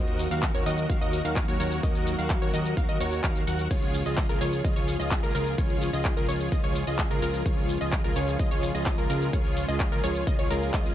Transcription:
Already playing: D#2 D#3 F#3 A#3 F#4 A#4 D#5
0.08 closed hi-hat
0.19 open hi-hat, shaker
0.31 D#2 F#4 A#4 F5, closed hi-hat, shaker
0.43 kick, clap, closed hi-hat, shaker
0.54 D#2 F#4 A#4 C#5, closed hi-hat, shaker
0.66 D#2 F#4 A#4 D#5, open hi-hat, shaker
0.78 closed hi-hat, shaker
0.90 D#2 F#4 A#4 F5, kick, closed hi-hat, shaker
1.01 D#2 F#4 A#4 D#5, closed hi-hat, shaker
1.13 open hi-hat, shaker
1.25 D#2 F#4 A#4 F5, closed hi-hat, shaker
1.36 kick, clap, closed hi-hat, shaker
1.48 D#2 F#4 A#4 C#5, closed hi-hat, shaker
1.60 D#2 F#4 A#4 C#5, open hi-hat, shaker
1.72 closed hi-hat, shaker
1.83 D#2 A#4 D#5, kick, closed hi-hat, shaker
1.95 closed hi-hat, shaker
2.07 open hi-hat, shaker
2.18 D#2 F#4 A#4 F5, closed hi-hat, shaker
2.30 kick, clap, closed hi-hat, shaker
2.42 D#2 F#4 A#4 C#5, closed hi-hat, shaker
2.54 D#2 F#4 A#4 D#5, open hi-hat, shaker
2.65 closed hi-hat, shaker
2.77 D#2 F#4 A#4 F5, kick, closed hi-hat, shaker
2.89 D#2 F#4 A#4 D#5, closed hi-hat, shaker
3.00 D#2 F#4 A#4 C#5, open hi-hat, shaker
3.12 closed hi-hat, shaker
3.24 D#2 F#4 A#4 F5, kick, clap, closed hi-hat, shaker
3.36 closed hi-hat, shaker
3.47 D#2 F#4 A#4 F#5, open hi-hat, shaker
3.59 closed hi-hat, shaker
3.71 C#2 C#3 F3 G#3 F4 G#4 C#5, kick, closed hi-hat, crash, shaker
3.83 closed hi-hat
3.94 open hi-hat, shaker
4.06 C#2 F4 G#4 D#5, closed hi-hat, shaker
4.17 kick, clap, closed hi-hat, shaker
4.29 C#2 F4 G#4 A#4, closed hi-hat, shaker
4.41 C#2 F4 G#4 C#5, open hi-hat, shaker
4.53 closed hi-hat, shaker
4.64 C#2 F4 G#4 D#5, kick, closed hi-hat, shaker
4.76 C#2 F4 G#4 C#5, closed hi-hat, shaker
4.88 open hi-hat, shaker
5.00 C#2 F4 G#4 D#5, closed hi-hat, shaker
5.11 kick, clap, closed hi-hat, shaker
5.23 C#2 F4 G#4 A#4, closed hi-hat, shaker
5.35 C#2 F4 G#4 A#4, open hi-hat, shaker
5.47 closed hi-hat, shaker
5.58 C#2 F4 G#4 C#5, kick, closed hi-hat, shaker
5.70 closed hi-hat
5.82 open hi-hat, shaker
5.93 C#2 F4 G#4 D#5, closed hi-hat, shaker
6.05 kick, clap, closed hi-hat, shaker
6.17 C#2 F4 G#4 A#4, closed hi-hat, shaker
6.28 C#2 F4 G#4 C#5, open hi-hat, shaker
6.40 closed hi-hat, shaker
6.52 C#2 F4 G#4 D#5, kick, closed hi-hat, shaker
6.64 C#2 F4 G#4 C#5, closed hi-hat, shaker
6.75 open hi-hat, shaker
6.87 C#2 F4 G#4 D#5, closed hi-hat, shaker
6.99 kick, clap, closed hi-hat, shaker
7.10 C#2 F4 G#4 A#4, closed hi-hat, shaker
7.22 C#2 F4 G#4 A#4, open hi-hat, shaker
7.34 closed hi-hat, shaker
7.46 C#2 F4 G#4 C#5, kick, closed hi-hat, shaker
7.57 closed hi-hat
7.69 open hi-hat, shaker
7.81 C#2 F4 G#4 D#5, closed hi-hat, shaker
7.92 kick, clap, closed hi-hat, shaker
8.04 C#2 F4 G#4 A#4, closed hi-hat, shaker
8.16 C#2 F4 G#4 C#5, open hi-hat, shaker
8.28 closed hi-hat, shaker
8.39 C#2 G#4 D#5, kick, closed hi-hat, shaker
8.51 C#2 F4 G#4 C#5, closed hi-hat, shaker
8.63 open hi-hat, shaker
8.75 C#2 F4 G#4 D#5, closed hi-hat, shaker
8.86 kick, clap, closed hi-hat, shaker
8.98 C#2 F4 G#4 A#4, closed hi-hat, shaker
9.10 C#2 F4 G#4 A#4, open hi-hat, shaker
9.22 closed hi-hat, shaker
9.33 C#2 F4 G#4 C#5, kick, closed hi-hat, shaker
9.45 closed hi-hat
9.57 open hi-hat, shaker
9.68 C#2 F4 G#4 D#5, closed hi-hat, shaker
9.80 kick, clap, closed hi-hat, shaker
9.92 C#2 F4 G#4 A#4, closed hi-hat, shaker
10.04 C#2 F4 G#4 C#5, open hi-hat, shaker
10.15 closed hi-hat, shaker
10.27 C#2 F4 G#4 D#5, kick, closed hi-hat, shaker
10.39 C#2 F4 G#4 C#5, closed hi-hat, shaker
10.50 C#2 F4 G#4 A#4, open hi-hat, shaker
10.62 closed hi-hat, shaker
10.74 C#2 D#5, kick, clap, closed hi-hat, shaker
10.86 closed hi-hat, shaker

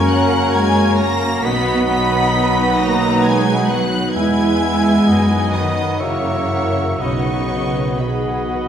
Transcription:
Already playing: F#2 C#3 G#3 A#3 C#4 F#4 A#4 C#5 G#5 A#5 G#6
0.11 F#3 F#5 F#6
0.53 G#3 G#5 G#6
0.98 A#3 A#5 A#6
1.43 B1 D#3 F#3 B3 D#4 F#4 B4 D#5 F#5 B5 B6
1.86 B3 B5 B6
2.76 A#6
2.81 A#3 A#5
3.23 G#5 G#6
3.27 G#3
3.68 F#3 F#5 F#6
4.11 G#6
4.15 E2 E3 G#3 B3 E4 B4 E5 G#5
4.20 G#3
5.07 F#2 F#3 B3 D#4 F#4 B4 D#5 F#5
5.12 D#3
5.52 D#3 D#5 D#6
5.99 C#3 E3 A#3 E4 F#4 A#4 C#5 E5 F#5 C#6
6.99 B1 C#3 B3 D#4 F#4 B4 C#5 D#5 F#5 C#6
7.03 D#3
7.99 B2 B3 F#4 G#4 B4 D#5 F#5 B5
8.51 F#4

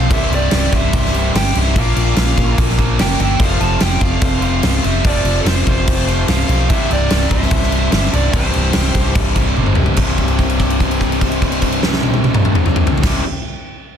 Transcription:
Already playing: F3 F5
0.09 C1 C2 G2 C3 G3 E4 C5 E5, kick, crash
0.30 C1, crash
0.34 G4 D5
0.51 C1, snare, crash
0.72 C1 C5 E5, kick, crash
0.93 C1, kick, crash
1.06 snare
1.13 C2 G2 C3, crash
1.33 G1 C2 G2 G5, snare, crash
1.37 C3 C5
1.55 C1 C2 G2 C3 G3 E4 C5 E5, crash
1.75 A#1 A#2 F3 A#3 D4 F4 A#4, kick, crash
1.79 A#3 D5 F5
1.96 A#1, crash
2.16 A#1, snare, crash
2.37 A#1, kick, crash
2.58 A#1, kick, crash
2.70 snare
2.78 A#2 F3 A#3, kick, crash
2.98 F1 A#2 F3 A#3 D5 G5, snare, crash
3.19 G1 A#2 F3 A#3 D4 F4 A#4 E5 G5, crash
3.38 F1 F2 C3 F3 A3 C4 F4 F5, kick, crash
3.42 F3 C5
3.60 F1 F5 A5, crash
3.80 F1 C5 G5, snare, crash
4.01 F1 D5 F5, kick, crash
4.21 F1 C5 F5, kick, crash
4.41 F2 C3 F3 C5 F5, crash
4.63 C1 F2 C3, snare, crash
4.67 F3
4.83 F1 F2 C3 F3 A3 C4 F4 C5 E5, crash
5.04 F1 F2 C3 F3 A3 C4 F4 A4 D5, kick, crash
5.24 F1, crash
5.40 F4 A4
5.45 F1 F4 C5, snare, crash
5.66 F1 F4 C5, kick, crash
5.88 F1, kick, crash
6.07 F2 C3 F3, crash
6.28 C1 F2 C3 F3 C5 F5, snare, crash
6.48 B1 F2 C3 F3 A3 C4 F4, crash
6.68 C1 C2 G2 C3 G3 C5 E5, kick, crash
6.73 C3 E4
6.90 C1 G4 D5, crash
7.10 C1, snare, crash
7.29 C1 C5, kick, crash
7.33 E5
7.42 snare
7.51 C1, kick, crash
7.62 snare
7.72 C2 G2 C3, crash
7.92 G1 C2 G2 C3 C5 E5, snare, crash
8.11 C1 G2 C3 G3 E4 A4 D5, crash
8.15 C2
8.33 C1 C2 G2 C3 G3 E4 G4 C5, kick, crash
8.54 C1, crash
8.73 C1, snare, crash
8.95 C1, kick, crash
9.15 C1, kick, crash
9.35 G2 C3, kick, crash
9.39 C2
9.56 G1 C2 G2 C3, high tom
9.66 mid tom
9.75 C1 C3 G3 E4, mid tom
9.79 C2 G2
9.86 floor tom
9.95 C1 C2 G2, kick, crash
10.00 C3 G3 E4
10.18 kick, crash
10.28 crash
10.39 kick, crash
10.50 crash
10.60 kick, crash
10.70 crash
10.80 kick, crash
10.91 crash
11.01 kick, crash
11.12 crash
11.21 kick, crash
11.32 crash
11.42 kick, crash
11.52 crash
11.62 kick, crash
11.72 crash
11.83 snare
11.93 snare
12.03 high tom
12.14 high tom
12.24 high tom
12.34 mid tom
12.45 mid tom
12.55 mid tom
12.66 mid tom
12.76 mid tom
12.87 floor tom
12.98 floor tom
13.02 C1 C2 G2 C3 G3, kick, snare, crash
13.06 E4

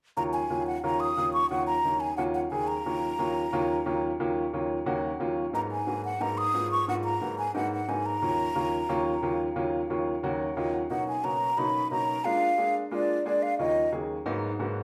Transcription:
0.17 D#2 F#3 A#3 C#4 F4 A#5
0.33 G#5
0.50 D#2 F#3 A#3 C#4 F4
0.67 F#5
0.83 D#2 F#3 A#3 C#4 F4 A#5
1.00 D#6
1.17 D#2 F#3 A#3 C#4 F4
1.33 C#6
1.50 D#2 F#3 A#3 C#4 F4 F#5
1.67 A#5
1.84 D#2 F#3 A#3 C#4 D#4
2.00 G#5
2.17 D#2 F#3 A#3 C#4 F4 F#5
2.34 F#5
2.51 D#2 F#3 A#3 C#4 G#4 G#5
2.68 A#5
2.86 D#2 F#3 A#3 C#4 F4
3.19 D#2 F#3 A#3 C#4 F4
3.53 D#2 F#3 A#3 C#4 F4
3.86 D#2 F#3 A#3 C#4 F4
4.20 D#2 F#3 A#3 C#4 F4
4.53 D#2 F#3 A#3 C#4 F4
4.86 D#2 F#3 A#3 C#4 F#4
5.20 D#2 F#3 A#3 C#4 F4
5.53 G#2 F#3 A#3 B3 D#4 A#5
5.72 G#5
5.87 G#2 F#3 A#3 B3 F#4
6.05 F#5
6.20 G#2 F#3 A#3 B3 D#4 A#5
6.38 D#6
6.54 G#2 F#3 A#3 B3 F4
6.72 C#6
6.88 G#2 F#3 A#3 B3 F4 F#5
7.05 A#5
7.21 G#2 F#3 A#3 B3 F#4
7.38 G#5
7.54 G#2 F#3 A#3 B3 D#4 F#5
7.72 F#5
7.88 G#2 F#3 A#3 B3 D#4 G#5
8.06 A#5
8.22 D#2 F#3 A#3 C#4 F4
8.55 D#2 F#3 A#3 C#4 F4
8.89 D#2 F#3 A#3 C#4 F4
9.22 D#2 F#3 A#3 C#4 F4
9.56 D#2 F#3 A#3 C#4 F4
9.90 D#2 F#3 A#3 C#4 F4
10.23 D#2 F#3 A#3 C#4 F#4
10.40 C#5
10.57 D#2 F#3 A#3 C#4 F4 D#5
10.73 F#5
10.90 B2 F#3 A#3 C#4 D#4 F#5
11.08 G#5
11.24 B2 F#3 A#3 C#4 F#4 A#5
11.57 B2 F#3 A#3 C#4 D#4 B5
11.91 B2 F#3 A#3 C#4 D#4 A#5
12.24 G#3 A#3 D4 F4 F5
12.58 G#3 A#3 D4 G#4
12.91 G#3 A#3 D4 F4 D5
13.25 G#3 A#3 D4 G#4 D5
13.43 F5
13.59 D#2 F#3 A#3 C#4 F4 D#5
13.92 D#2 F#3 A#3 C#4 G#4
14.26 G#2 F#3 A#3 B3 D#4
14.59 G#2 F#3 A#3 B3 F#4

